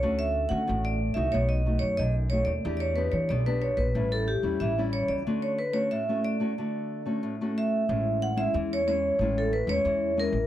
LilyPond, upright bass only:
\new Staff \with { instrumentName = "Upright bass" } { \clef bass \time 4/4 \key d \major \tempo 4 = 92 d,8. d16 a,,8. c,16 b,,8. fis,16 b,,8. dis,16 | e,8. e16 b,,8. bes,,16 a,,8. e,16 a,,8. cis,16 | r1 | \key a \major a,,4 e,4 a,,8. e,16 e,8. a,,16 | }